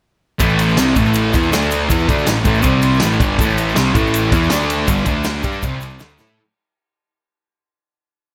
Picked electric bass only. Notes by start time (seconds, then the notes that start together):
0.40 A1
0.78 C2
0.96 A1
1.34 E2
1.52 D2
1.91 E2
2.08 D2
2.27 A1
2.46 A1
2.65 C2
3.03 A1
3.21 G1
3.39 A1
3.77 C2
3.94 A1
4.33 E2
4.51 D2
4.88 G1
5.07 D2
5.44 G2
5.64 C2
6.01 D2
6.20 A2